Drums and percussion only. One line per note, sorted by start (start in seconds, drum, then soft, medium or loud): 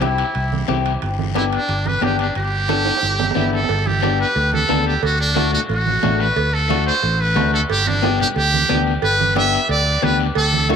0.02 high conga medium
0.02 high timbale medium
0.02 short guiro medium
0.18 high timbale medium
0.18 short guiro medium
0.35 high conga soft
0.35 high timbale medium
0.35 long guiro medium
0.52 high conga medium
0.68 high conga medium
0.68 high timbale medium
0.68 short guiro medium
0.85 high timbale medium
0.85 short guiro medium
1.02 high conga soft
1.02 high timbale medium
1.02 long guiro medium
1.19 high conga medium
1.35 high conga medium
1.35 high timbale medium
1.35 short guiro medium
1.52 high timbale medium
1.52 short guiro medium
1.69 high conga soft
1.69 high timbale medium
1.69 long guiro medium
1.86 high conga medium
2.02 high conga medium
2.02 high timbale medium
2.02 low timbale medium
2.02 short guiro medium
2.19 high timbale medium
2.19 short guiro medium
2.35 high conga soft
2.35 high timbale medium
2.35 long guiro medium
2.69 high conga medium
2.69 high timbale medium
2.69 short guiro medium
2.85 high timbale medium
2.85 short guiro medium
2.97 high timbale medium
3.03 high conga soft
3.03 long guiro medium
3.19 high conga medium
3.19 low timbale medium
3.31 low timbale medium
3.36 high conga medium
3.36 short guiro medium
3.42 low timbale medium
3.53 short guiro medium
3.64 low timbale medium
3.69 cowbell loud
3.69 high conga soft
3.69 long guiro medium
3.87 high conga medium
4.03 cowbell medium
4.03 high conga medium
4.03 short guiro medium
4.19 short guiro medium
4.35 cowbell medium
4.35 high conga soft
4.35 long guiro medium
4.53 high conga medium
4.69 cowbell medium
4.69 high conga medium
4.69 low timbale medium
4.69 short guiro medium
4.86 short guiro medium
5.02 cowbell loud
5.02 high conga soft
5.02 long guiro medium
5.36 cowbell medium
5.36 high conga medium
5.36 short guiro medium
5.53 low conga medium
5.53 short guiro medium
5.69 cowbell medium
5.69 high conga soft
5.69 long guiro medium
5.87 high conga medium
6.03 cowbell medium
6.03 high conga medium
6.03 low conga medium
6.03 low timbale medium
6.03 short guiro medium
6.19 short guiro medium
6.36 cowbell loud
6.36 high conga soft
6.36 long guiro medium
6.70 cowbell medium
6.70 high conga medium
6.70 short guiro medium
6.87 short guiro medium
7.03 cowbell medium
7.03 high conga soft
7.03 long guiro medium
7.36 cowbell medium
7.36 high conga medium
7.36 low timbale medium
7.36 short guiro medium
7.53 short guiro medium
7.70 cowbell loud
7.70 high conga soft
7.70 long guiro medium
7.87 high conga medium
8.03 cowbell medium
8.03 high conga medium
8.03 short guiro medium
8.19 low conga medium
8.19 short guiro medium
8.36 cowbell medium
8.36 high conga soft
8.36 long guiro medium
8.54 high conga medium
8.69 cowbell medium
8.69 high conga medium
8.69 low conga medium
8.69 short guiro medium
8.86 short guiro medium
9.02 cowbell loud
9.02 high conga soft
9.02 long guiro medium
9.20 high conga medium
9.36 cowbell medium
9.36 high conga medium
9.36 short guiro medium
9.52 short guiro medium
9.69 cowbell medium
9.69 high conga soft
9.69 long guiro medium
10.02 cowbell medium
10.02 high conga medium
10.02 short guiro medium
10.19 short guiro medium
10.35 cowbell loud
10.35 high conga soft
10.35 long guiro medium
10.53 high conga medium
10.69 cowbell medium
10.69 high conga medium
10.69 short guiro medium